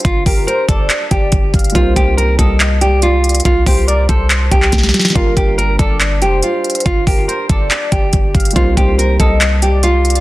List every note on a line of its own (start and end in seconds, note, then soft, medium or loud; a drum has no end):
0.00 1.70 G3 medium
0.00 1.70 A#3 medium
0.00 1.71 D4 medium
0.00 1.72 F4 medium
0.00 1.72 G4 medium
0.05 0.25 G1 loud
0.05 0.22 F4 loud
0.05 kick loud
0.05 closed hi-hat medium
0.26 0.46 G1 loud
0.26 0.44 G4 medium
0.26 0.46 A#4 medium
0.26 kick loud
0.26 open hi-hat medium
0.47 0.65 A#4 medium
0.47 0.68 C5 loud
0.47 closed hi-hat medium
0.69 0.89 G1 loud
0.69 0.86 A4 medium
0.69 1.50 D5 medium
0.69 kick medium
0.69 closed hi-hat medium
0.90 clap loud
0.90 closed hi-hat medium
1.11 1.32 G1 loud
1.11 1.71 G4 medium
1.11 kick medium
1.11 closed hi-hat medium
1.32 1.53 G1 loud
1.32 kick medium
1.32 closed hi-hat medium
1.54 1.74 G1 loud
1.54 1.74 F5 medium
1.54 kick loud
1.54 closed hi-hat medium
1.59 closed hi-hat medium
1.64 closed hi-hat medium
1.70 5.10 G3 medium
1.70 5.11 A#3 medium
1.70 closed hi-hat medium
1.75 1.95 C2 loud
1.75 5.11 C4 medium
1.75 5.12 D#4 medium
1.75 1.93 F4 loud
1.75 5.13 G4 medium
1.75 2.35 C5 loud
1.75 kick loud
1.75 closed hi-hat medium
1.96 2.37 C2 loud
1.96 2.14 G4 medium
1.96 kick loud
1.96 closed hi-hat medium
2.17 2.35 A#4 medium
2.17 closed hi-hat medium
2.39 3.41 C2 loud
2.39 2.56 A4 medium
2.39 2.79 D#5 medium
2.39 kick medium
2.39 closed hi-hat medium
2.60 clap loud
2.60 closed hi-hat medium
2.81 2.99 G4 medium
2.81 3.41 D5 medium
2.81 closed hi-hat medium
3.02 3.43 F4 medium
3.02 closed hi-hat medium
3.24 closed hi-hat medium
3.29 closed hi-hat medium
3.35 closed hi-hat medium
3.40 closed hi-hat medium
3.45 3.66 C2 loud
3.45 3.63 F4 loud
3.45 kick loud
3.45 closed hi-hat medium
3.66 4.07 C2 loud
3.66 3.84 G4 medium
3.66 3.87 C5 medium
3.66 kick loud
3.66 open hi-hat medium
3.88 4.06 A#4 medium
3.88 4.08 D5 medium
3.88 closed hi-hat medium
4.09 4.50 C2 loud
4.09 4.27 A4 medium
4.09 4.69 C5 medium
4.09 kick loud
4.09 closed hi-hat medium
4.30 clap loud
4.30 closed hi-hat medium
4.51 4.72 C2 loud
4.51 5.12 G4 medium
4.51 kick medium
4.51 closed hi-hat medium
4.62 clap medium
4.72 4.93 C2 loud
4.72 kick medium
4.72 snare medium
4.72 closed hi-hat medium
4.78 snare medium
4.83 snare medium
4.89 snare medium
4.94 snare medium
4.94 closed hi-hat medium
4.99 snare medium
4.99 closed hi-hat medium
5.05 snare loud
5.05 closed hi-hat medium
5.10 8.50 G3 medium
5.10 8.51 A#3 medium
5.10 snare medium
5.15 5.36 G1 loud
5.15 8.52 D4 medium
5.15 5.33 F4 medium
5.15 8.53 F4 medium
5.15 8.53 G4 medium
5.15 5.75 A#4 loud
5.15 kick loud
5.15 closed hi-hat medium
5.37 5.78 G1 loud
5.37 5.54 G4 medium
5.37 kick loud
5.37 closed hi-hat medium
5.58 5.76 A#4 medium
5.58 closed hi-hat medium
5.79 6.23 G1 loud
5.79 5.97 A4 medium
5.79 6.19 D5 medium
5.79 kick medium
5.79 closed hi-hat medium
6.01 clap loud
6.01 closed hi-hat medium
6.22 6.42 F1 loud
6.22 6.40 G4 medium
6.22 6.82 C5 medium
6.22 closed hi-hat medium
6.43 6.83 F4 medium
6.43 closed hi-hat medium
6.64 closed hi-hat medium
6.70 closed hi-hat medium
6.75 closed hi-hat medium
6.80 closed hi-hat medium
6.86 7.06 G1 loud
6.86 7.03 F4 loud
6.86 kick loud
6.86 closed hi-hat medium
7.07 7.27 G1 loud
7.07 7.25 G4 medium
7.07 7.27 A#4 medium
7.07 kick loud
7.07 open hi-hat medium
7.28 7.46 A#4 medium
7.28 7.48 C5 medium
7.28 closed hi-hat medium
7.49 7.70 G1 loud
7.49 7.67 A4 medium
7.49 8.31 D5 medium
7.49 kick loud
7.49 closed hi-hat medium
7.71 clap loud
7.71 closed hi-hat medium
7.92 8.12 G1 loud
7.92 8.52 G4 medium
7.92 kick medium
7.92 closed hi-hat medium
8.13 8.34 G1 loud
8.13 kick medium
8.13 closed hi-hat medium
8.35 8.55 G1 loud
8.35 8.55 F5 medium
8.35 kick medium
8.35 closed hi-hat medium
8.40 closed hi-hat medium
8.45 closed hi-hat medium
8.51 10.20 G3 medium
8.51 10.20 A#3 medium
8.51 closed hi-hat medium
8.56 8.76 C2 loud
8.56 10.20 C4 medium
8.56 10.20 D#4 medium
8.56 8.74 F4 loud
8.56 10.20 G4 medium
8.56 9.16 C5 loud
8.56 kick loud
8.56 closed hi-hat medium
8.77 9.18 C2 loud
8.77 8.95 G4 medium
8.77 kick loud
8.77 closed hi-hat medium
8.99 9.16 A#4 medium
8.99 closed hi-hat medium
9.20 10.20 C2 loud
9.20 9.37 A4 medium
9.20 9.60 D#5 medium
9.20 kick loud
9.20 closed hi-hat medium
9.41 clap loud
9.41 closed hi-hat medium
9.62 9.80 G4 medium
9.62 10.20 D5 medium
9.62 closed hi-hat medium
9.83 10.20 F4 medium
9.83 closed hi-hat medium
10.05 closed hi-hat medium
10.10 closed hi-hat medium
10.15 closed hi-hat medium